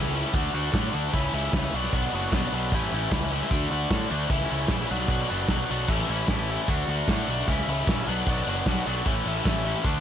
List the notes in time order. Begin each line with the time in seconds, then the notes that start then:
Already playing: C#2 A2 E3 A3 C#4 E4
0.14 A2 E3 A3 C#4 E4, open hi-hat
0.34 D2 D3 A3 D4 F#4, kick
0.54 D2 D3 A3 D4 F#4, open hi-hat
0.73 A2 D3 A3 D4 F#4, kick, snare
0.94 D2 D3 A3 D4 F#4, open hi-hat
1.13 C#2 C#3 E3 A3 C#4 E4, kick
1.33 C#2 C#3 E3 A3 C#4 E4, open hi-hat
1.53 C#2 C#3 E3 A3 C#4 E4, kick, snare
1.73 B1 B2 F#3 B3 D4 F#4, open hi-hat
1.84 snare
1.93 B1 B2 F#3 B3 D4 F#4, kick
2.12 F#1 B2 F#3 B3 D4 F#4, open hi-hat
2.32 B1 B2 F#3 B3 D4 F#4, kick, snare
2.53 B1 B2 F#3 B3 D4 F#4, open hi-hat
2.72 A1 A2 E3 A3 C#4 E4, kick
2.83 snare
2.92 A1 A2 E3 A3 C#4 E4, open hi-hat
3.12 C#2 A2 E3 A3 C#4 E4, kick, snare
3.31 A2 E3 A3 C#4 E4, open hi-hat
3.41 snare
3.51 D2 D3 A3 D4 F#4, kick
3.71 D2 D3 A3 D4 F#4, open hi-hat
3.90 A2 D3 A3 D4 F#4, kick, snare
4.10 D2 D3 A3 D4 F#4, open hi-hat
4.30 C#2 C#3 E3 A3 C#4 E4, kick
4.41 snare
4.49 C#2 C#3 E3 A3 C#4 E4, open hi-hat
4.68 A#1 C#3 E3 A3 C#4 E4, kick, snare
4.88 B1 B2 F#3 B3 D4 F#4, open hi-hat
4.98 snare
5.08 B1 B2 F#3 B3 D4 F#4, kick
5.28 F#1 B2 F#3 B3 D4 F#4, open hi-hat
5.48 B1 B2 F#3 B3 D4 F#4, kick, snare
5.68 B1 B2 F#3 B3 D4 F#4, open hi-hat
5.88 A1 A2 E3 A3 C#4 E4, kick, crash
5.99 snare
6.08 A1 A2 E3 A3 C#4 E4, open hi-hat
6.28 A1 A2 E3 A3 C#4 E4, kick, snare
6.49 A2 E3 A3 C#4 E4, open hi-hat
6.68 D2 D3 A3 D4 F#4, kick
6.87 D2 D3 A3 D4 F#4, open hi-hat
7.08 A2 D3 A3 D4 F#4, kick, snare
7.28 B1 D3 A3 D4 F#4, open hi-hat
7.48 C#2 C#3 E3 A3 C#4 E4, kick
7.59 snare
7.67 C#2 C#3 E3 A3 C#4 E4, open hi-hat
7.87 A#1 C#3 E3 A3 C#4 E4, kick, snare
8.07 B1 B2 F#3 B3 D4 F#4, open hi-hat
8.27 B1 B2 F#3 B3 D4 F#4, kick
8.47 F#1 B2 F#3 B3 D4 F#4, open hi-hat
8.66 B1 B2 F#3 B3 D4 F#4, kick, snare
8.86 B1 B2 F#3 B3 D4 F#4, open hi-hat
9.06 A1 A2 E3 A3 C#4 E4, kick
9.26 A1 A2 E3 A3 C#4 E4, open hi-hat
9.45 A1 A2 E3 A3 C#4 E4, kick, snare
9.65 A2 E3 A3 C#4 E4, open hi-hat
9.84 D2 D3 A3 D4 F#4, kick